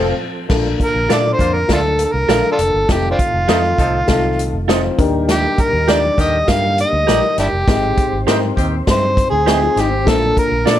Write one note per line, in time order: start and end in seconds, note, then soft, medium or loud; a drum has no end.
0.00 0.11 F1 loud
0.00 0.48 F3 medium
0.00 0.10 C4 loud
0.00 0.48 C4 medium
0.00 0.10 F4 loud
0.00 0.10 A4 loud
0.00 0.48 A4 medium
0.00 0.10 C5 loud
0.00 0.11 C5 loud
0.00 0.11 F5 loud
0.49 0.73 A#1 medium
0.49 1.35 A#2 medium
0.49 2.87 D3 medium
0.49 0.96 A#3 medium
0.49 2.87 A#3 medium
0.49 0.96 D4 medium
0.49 0.96 F4 medium
0.49 2.87 F4 medium
0.49 0.96 A4 loud
0.49 kick loud
0.49 snare loud
0.49 crash medium
0.80 1.10 A#4 loud
0.80 kick medium
0.80 closed hi-hat medium
0.95 1.06 A#1 medium
1.08 1.33 A#2 medium
1.08 1.19 F3 medium
1.08 1.55 A#3 medium
1.08 1.55 D4 medium
1.08 1.19 D4 medium
1.08 1.56 F4 medium
1.08 1.56 A4 medium
1.08 1.19 A4 loud
1.08 1.21 A4 medium
1.08 1.21 D5 medium
1.08 1.21 F5 medium
1.08 snare loud
1.08 closed hi-hat medium
1.13 1.30 D5 medium
1.33 1.55 C5 medium
1.38 1.63 F2 medium
1.38 1.58 D3 medium
1.38 1.58 A#3 medium
1.38 1.58 F4 loud
1.38 kick medium
1.38 closed hi-hat medium
1.53 1.72 A#4 medium
1.68 2.04 D2 loud
1.68 2.15 A#3 medium
1.68 2.15 D4 medium
1.68 2.15 F4 medium
1.68 2.15 A4 medium
1.68 kick medium
1.68 snare loud
1.68 closed hi-hat medium
1.73 1.80 D4 medium
1.73 1.80 F4 medium
1.73 2.04 A4 medium
1.99 closed hi-hat medium
2.04 2.14 A4 medium
2.12 2.26 C2 medium
2.12 2.51 A#4 medium
2.28 2.41 A#1 medium
2.28 2.75 A#3 medium
2.28 2.75 D4 medium
2.28 2.75 F4 medium
2.28 2.75 A4 medium
2.28 2.40 A4 medium
2.28 2.40 D5 medium
2.28 2.41 F5 loud
2.28 snare loud
2.28 closed hi-hat medium
2.52 2.60 D4 medium
2.52 2.58 F4 medium
2.52 2.94 A4 medium
2.59 2.71 F1 medium
2.59 closed hi-hat medium
2.74 2.86 G1 medium
2.88 3.13 F1 loud
2.88 4.97 D#3 medium
2.88 4.97 A3 medium
2.88 3.35 C4 medium
2.88 3.35 D#4 medium
2.88 3.35 F4 medium
2.88 4.97 F4 medium
2.88 3.35 A4 medium
2.88 kick loud
2.88 snare medium
2.88 closed hi-hat medium
2.92 3.10 G4 medium
3.11 3.18 C4 medium
3.11 3.18 D4 medium
3.11 4.56 F4 medium
3.19 kick medium
3.19 closed hi-hat medium
3.34 3.46 F1 medium
3.48 3.72 F2 medium
3.48 3.58 C3 medium
3.48 3.59 A3 medium
3.48 3.95 C4 medium
3.48 3.95 D#4 medium
3.48 3.58 D#4 loud
3.48 3.60 F4 medium
3.48 3.95 F4 medium
3.48 3.60 A4 medium
3.48 3.95 A4 medium
3.48 3.60 D#5 medium
3.48 snare loud
3.48 closed hi-hat medium
3.78 4.02 C2 medium
3.78 3.98 F3 medium
3.78 3.98 D#4 medium
3.78 3.98 A4 medium
3.78 kick medium
3.78 closed hi-hat medium
4.08 4.55 C2 medium
4.08 4.55 C4 medium
4.08 4.55 D#4 medium
4.08 4.55 F4 medium
4.08 4.55 A4 medium
4.08 kick medium
4.08 snare loud
4.08 closed hi-hat medium
4.39 closed hi-hat medium
4.53 4.88 F1 medium
4.68 4.98 C4 medium
4.68 4.97 D#4 medium
4.68 4.79 F4 medium
4.68 4.99 F4 medium
4.68 4.80 A4 medium
4.68 4.99 C5 loud
4.68 4.80 D#5 medium
4.68 snare loud
4.68 closed hi-hat medium
4.98 5.46 D#2 loud
4.98 5.84 D#3 medium
4.98 7.65 G3 medium
4.98 7.65 A#3 medium
4.98 5.70 D4 loud
4.98 5.70 D#4 medium
4.98 5.70 G4 medium
4.98 7.65 G4 medium
4.98 5.71 A#4 loud
4.98 kick loud
4.98 closed hi-hat medium
5.29 5.63 G4 medium
5.29 snare loud
5.29 closed hi-hat medium
5.58 5.93 A#4 medium
5.58 kick medium
5.58 closed hi-hat medium
5.73 6.08 D#2 loud
5.88 5.98 D#3 medium
5.88 5.98 D4 medium
5.88 6.35 D4 medium
5.88 6.35 D#4 medium
5.88 5.99 G4 medium
5.88 5.98 G4 loud
5.88 6.35 G4 medium
5.88 5.99 A#4 medium
5.88 6.35 A#4 medium
5.88 6.00 D5 medium
5.88 6.20 D5 medium
5.88 snare loud
5.88 closed hi-hat medium
6.18 6.42 D#2 medium
6.18 6.37 D3 medium
6.18 6.37 D#3 medium
6.18 6.37 G4 loud
6.18 6.52 D#5 medium
6.18 kick medium
6.18 closed hi-hat medium
6.48 6.83 G2 medium
6.48 6.94 D4 medium
6.48 6.94 D#4 medium
6.48 6.95 G4 medium
6.48 6.95 A#4 medium
6.48 6.79 F5 loud
6.48 kick medium
6.48 snare loud
6.48 closed hi-hat medium
6.78 7.35 D#5 loud
6.78 closed hi-hat medium
6.93 7.05 D2 medium
7.07 7.20 A#1 medium
7.07 7.54 A#3 medium
7.07 7.54 D#4 medium
7.07 7.18 G4 medium
7.07 7.54 G4 medium
7.07 7.19 A#4 medium
7.07 7.54 A#4 medium
7.07 7.19 D5 medium
7.07 snare loud
7.07 closed hi-hat medium
7.38 7.50 G1 medium
7.38 7.46 D4 medium
7.38 7.47 E4 medium
7.38 8.24 G4 medium
7.38 snare soft
7.38 closed hi-hat medium
7.52 7.64 F1 medium
7.68 7.91 G#1 loud
7.68 8.53 G#2 medium
7.68 8.14 G#3 medium
7.68 8.14 C4 medium
7.68 10.05 C4 medium
7.68 8.14 D#4 medium
7.68 8.14 G4 medium
7.68 10.05 C5 medium
7.68 kick loud
7.68 snare loud
7.68 closed hi-hat medium
7.97 kick medium
7.97 closed hi-hat medium
8.13 8.24 G#1 medium
8.27 8.51 G#2 medium
8.27 8.37 D#3 medium
8.27 8.34 B3 medium
8.27 8.37 C4 medium
8.27 8.74 D#4 medium
8.27 8.38 G4 medium
8.27 8.74 G4 medium
8.27 8.37 G4 loud
8.27 8.74 A#4 loud
8.27 8.38 C5 medium
8.27 8.39 D#5 medium
8.27 snare loud
8.27 closed hi-hat medium
8.33 8.77 C4 medium
8.57 8.81 D#2 loud
8.57 8.76 D#3 medium
8.57 8.76 C4 medium
8.57 8.76 G4 medium
8.57 kick medium
8.57 closed hi-hat medium
8.87 9.23 G2 medium
8.87 9.33 C4 medium
8.87 9.34 D#4 medium
8.87 9.34 G4 medium
8.87 9.33 G#4 medium
8.87 kick medium
8.87 snare loud
8.87 closed hi-hat medium
8.91 9.26 C5 medium
9.17 kick medium
9.17 closed hi-hat medium
9.30 9.67 D2 medium
9.30 9.82 G#4 medium
9.30 9.46 G#4 medium
9.46 9.93 C4 medium
9.46 9.93 D#4 medium
9.46 9.61 G4 medium
9.46 9.58 G4 medium
9.46 9.93 G#4 medium
9.46 9.58 C5 medium
9.46 9.58 D#5 medium
9.46 9.93 G5 medium
9.46 snare loud
9.46 closed hi-hat medium
9.61 9.76 F4 medium
9.76 10.07 G#1 medium
9.76 9.90 D#4 medium
9.76 snare soft
9.76 closed hi-hat medium
9.80 10.11 G4 medium
9.91 10.20 C4 medium
10.05 10.30 A#1 loud
10.05 10.79 A#2 medium
10.05 10.79 D3 medium
10.05 10.53 A#3 medium
10.05 10.79 A#3 medium
10.05 10.53 D4 medium
10.05 10.53 F4 medium
10.05 10.79 F4 medium
10.05 10.53 A4 medium
10.05 kick loud
10.05 snare loud
10.05 closed hi-hat medium
10.10 10.38 A4 medium
10.37 10.70 A#4 medium
10.37 kick medium
10.37 closed hi-hat medium
10.52 10.63 A#1 medium
10.65 10.79 A#2 medium
10.65 10.76 F3 medium
10.65 10.79 A#3 medium
10.65 10.79 D4 medium
10.65 10.77 D4 medium
10.65 10.79 F4 medium
10.65 10.77 F4 medium
10.65 10.79 A4 medium
10.65 10.77 A4 medium
10.65 10.76 A4 loud
10.65 10.78 D5 medium
10.65 10.79 D5 medium
10.65 snare loud
10.65 closed hi-hat medium